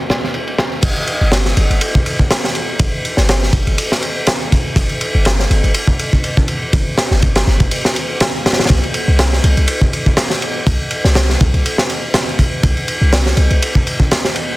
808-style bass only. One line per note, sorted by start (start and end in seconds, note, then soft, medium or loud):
0.83 0.93 G1 loud
1.21 1.53 G1 medium
1.57 1.67 G1 loud
1.70 1.79 G1 medium
2.80 2.90 G1 loud
3.18 3.50 G1 medium
3.53 3.64 G1 loud
3.67 3.76 G1 medium
4.76 4.87 G1 loud
5.15 5.47 G1 medium
5.50 5.61 G1 loud
5.64 5.73 G1 medium
6.73 6.84 G1 loud
7.11 7.43 G1 medium
7.47 7.58 G1 loud
7.60 7.69 G1 medium
8.70 8.80 C2 loud
9.08 9.40 C2 medium
9.44 9.54 C2 loud
9.57 9.66 C2 medium
10.67 10.77 C2 loud
11.04 11.37 C2 medium
11.41 11.51 C2 loud
11.54 11.63 C2 medium
12.63 12.74 C2 loud
13.01 13.33 C2 medium
13.37 13.48 C2 loud
13.51 13.59 C2 medium